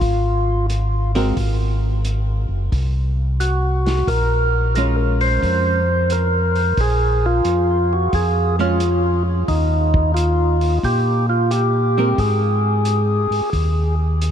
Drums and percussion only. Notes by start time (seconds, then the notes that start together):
0.01 kick, open hi-hat
0.70 closed hi-hat
1.15 open hi-hat
1.37 kick, open hi-hat
2.05 closed hi-hat
2.72 kick, open hi-hat
3.40 closed hi-hat
3.86 snare, open hi-hat
4.07 kick, open hi-hat
4.75 closed hi-hat
5.21 open hi-hat
5.43 kick, open hi-hat
6.10 closed hi-hat
6.55 open hi-hat
6.77 kick, open hi-hat
7.45 closed hi-hat
8.13 kick, open hi-hat
8.80 closed hi-hat
9.48 kick, open hi-hat
9.94 kick
10.16 closed hi-hat
10.61 open hi-hat
10.83 kick, open hi-hat
11.51 closed hi-hat
12.18 kick, open hi-hat
12.85 closed hi-hat
13.32 open hi-hat
13.53 kick, open hi-hat
14.21 closed hi-hat